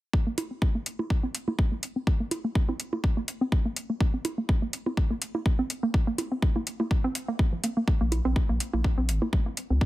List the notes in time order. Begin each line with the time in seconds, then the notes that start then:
0.13 kick
0.27 A#3
0.38 closed hi-hat, low bongo
0.51 C4
0.62 kick
0.75 A#3
0.86 closed hi-hat
0.99 A#3, low bongo
1.10 kick
1.23 C4
1.35 closed hi-hat
1.48 A#3, low bongo
1.59 kick
1.72 A#3
1.83 closed hi-hat
1.96 C4
2.07 kick
2.20 A#3
2.31 closed hi-hat, low bongo
2.44 A#3
2.55 kick
2.69 C4, low bongo
2.80 closed hi-hat
2.93 A#3, low bongo
3.04 kick
3.17 A#3
3.28 closed hi-hat
3.41 C4
3.52 kick
3.65 A#3
3.76 closed hi-hat
3.90 A#3
4.00 kick
4.14 C4
4.25 closed hi-hat, low bongo
4.38 A#3
4.49 kick
4.62 A#3
4.73 closed hi-hat
4.86 C4, low bongo
4.97 kick
5.10 A#3
5.22 closed hi-hat
5.35 A#3, low bongo
5.46 kick
5.59 C4
5.70 closed hi-hat
5.83 A#3
5.94 kick
6.07 A#3
6.18 closed hi-hat, low bongo
6.32 C4
6.42 kick
6.56 A#3, low bongo
6.67 closed hi-hat
6.80 A#3, low bongo
6.91 kick
7.04 C4
7.15 closed hi-hat
7.28 A#3
7.39 kick
7.53 F3
7.64 A#3, closed hi-hat
7.77 A#3
7.88 kick
8.01 A#1 A#3
8.12 closed hi-hat, low bongo
8.25 A#1 C4
8.36 kick
8.49 A#1 A#3
8.60 closed hi-hat
8.73 A#1 A#3, low bongo
8.84 kick
8.98 A#1 C4
9.09 G#1, closed hi-hat
9.22 A#3, low bongo
9.33 kick, low conga
9.46 A#3
9.57 closed hi-hat
9.70 C#2 C4
9.81 kick